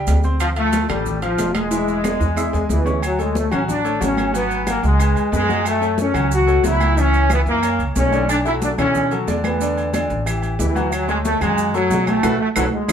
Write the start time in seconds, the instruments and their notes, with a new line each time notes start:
Already playing: grand piano G3 G4 G5
0.07 upright bass D2, high conga, high timbale, low timbale, maracas
0.23 grand piano C4 C5 C6, maracas
0.40 trombone section F3, high conga, high timbale, claves, maracas
0.56 grand piano F3 F4 F5, trombone section A3, high conga, high timbale, maracas
0.73 high conga, high timbale, low timbale, maracas
0.89 upright bass A1, trombone section G3, grand piano A3 A4 A5, high conga, low conga, high timbale, claves, maracas
1.06 high conga, low conga, maracas
1.22 grand piano F3 F4 F5, trombone section F3, high conga, high timbale, maracas
1.38 upright bass E1, high conga, high timbale, low timbale, maracas
1.55 grand piano G#3 G#4 G#5, trombone section G#3, high conga, high timbale, claves, maracas
1.71 grand piano E3 E4 E5, high conga, high timbale, maracas
1.88 high conga, maracas
2.04 grand piano G#3 G#4 G#5, high conga, low timbale, claves, maracas
2.20 upright bass E2, high timbale, maracas
2.37 grand piano E4 E5 E6, high conga, low timbale, claves, maracas
2.53 upright bass E2, grand piano G#3 G#4 G#5, high conga, low timbale, maracas
2.69 upright bass D2, trombone section E3, high conga, low timbale, maracas
2.86 grand piano C#4 C#5 C#6, low timbale, maracas
3.02 trombone section F#3, high conga, low agogo, claves, maracas
3.19 trombone section G#3, grand piano A3 A4 C#5, high conga, low agogo, maracas
3.35 trombone section A3, high conga, low timbale, maracas
3.51 upright bass A1, grand piano F#3 F#4 F#5, trombone section C#4, high conga, low conga, low agogo, claves, maracas
3.68 trombone section D4, high conga, low conga, maracas
3.84 grand piano A3 A4 C#5, high conga, low agogo, maracas
4.00 upright bass G#1, grand piano F#3 F#4 F#5, trombone section C#4, high conga, low timbale, low agogo, maracas
4.17 high conga, low agogo, claves, maracas
4.33 grand piano F#3 F#4 F#5, trombone section B3, high conga, low agogo, maracas
4.50 high conga, low agogo, maracas
4.67 grand piano F#3 F#4 F#5, trombone section A#3, high conga, low timbale, low agogo, claves, maracas
4.83 upright bass C#2, trombone section G#3, high conga, maracas
4.99 grand piano G#3 G#4 B4, high conga, low agogo, claves, maracas
5.16 upright bass F2, high conga, low agogo, maracas
5.32 upright bass F#2, grand piano G#3 G#4 B4, trombone section G#3, high conga, low timbale, maracas
5.49 grand piano F#3 F#4 F#5, high conga, low agogo, maracas
5.65 trombone section A3, high conga, low agogo, claves, maracas
5.81 grand piano A3 A4 C#5, high conga, low agogo, maracas
5.98 trombone section C#4, high conga, low timbale, maracas
6.14 upright bass C#2, grand piano F#3 F#4 F#5, high conga, low conga, low agogo, claves, maracas
6.30 trombone section F#4, high conga, maracas
6.47 grand piano A3 A4 C#5, high conga, low agogo, maracas
6.64 upright bass C#2, grand piano F#3 F#4 F#5, trombone section E4, high conga, low timbale, low agogo, maracas
6.80 high conga, low agogo, claves, maracas
6.97 grand piano E3 E4 E5, trombone section C#4, high conga, low agogo, maracas
7.13 high conga, low agogo, maracas
7.29 grand piano E3 E4 E5, trombone section B3, high conga, low timbale, low agogo, claves, maracas
7.46 upright bass F#2, trombone section A#3, high conga, maracas
7.63 grand piano A#3 A#4 C#5, high conga, low agogo, claves, maracas
7.79 upright bass C#2, high conga, low agogo, maracas
7.95 upright bass B1, grand piano A#3 A#4 C#5, trombone section C#4, high conga, low timbale, maracas
8.12 grand piano D3 D4 D5, high conga, low agogo, maracas
8.29 trombone section D4, high conga, low agogo, claves, maracas
8.45 grand piano F#3 F#4 A4, trombone section E4, low agogo, maracas
8.62 trombone section D4, high conga, low timbale, maracas
8.78 upright bass B2, grand piano D3 E4 C#5, trombone section C#4, high conga, low conga, low agogo, claves, maracas
8.95 high conga, low conga, maracas
9.11 grand piano F#3 F#4 A4, high conga, low agogo, maracas
9.28 upright bass E2, grand piano D3 D4 D5, high conga, low timbale, low agogo, maracas
9.44 trombone section B3, high conga, low agogo, claves, maracas
9.61 grand piano D3 D4 D5, high conga, low agogo, maracas
9.77 high conga, low agogo, maracas
9.93 grand piano D3 D4 D5, high conga, low timbale, low agogo, claves, maracas
10.10 upright bass A1, high conga, maracas
10.26 grand piano E3 E4 G4, high conga, low agogo, claves, maracas
10.42 high conga, low agogo, maracas
10.59 upright bass D2, trombone section E3, grand piano E3 E4 G4, high conga, low timbale, maracas
10.75 grand piano F#3 F#4 F#5, high conga, low agogo, maracas
10.92 trombone section F#3, high conga, low agogo, claves, maracas
11.08 trombone section G#3, grand piano A3 A4 C#5, high conga, low agogo, maracas
11.24 trombone section A3, high conga, low timbale, maracas
11.41 upright bass F#2, grand piano F#3 F#4 F#5, trombone section G#3, high conga, low conga, low agogo, claves, maracas
11.58 high conga, maracas
11.74 trombone section F#3, grand piano A3 A4 C#5, high conga, low agogo, maracas
11.90 upright bass B1, grand piano F#3 F#4 F#5, high conga, low timbale, low agogo, maracas
12.07 trombone section A3, high conga, low agogo, claves, maracas
12.23 upright bass B1, grand piano F#4 A4 B4, high conga, high timbale, claves, maracas
12.40 trombone section A3
12.56 upright bass B1, trombone section F#3, grand piano F#4 A4 B4, high conga, high timbale, claves, maracas
12.74 trombone section G#3
12.88 upright bass E2, grand piano D4 E4 G#4, claves, maracas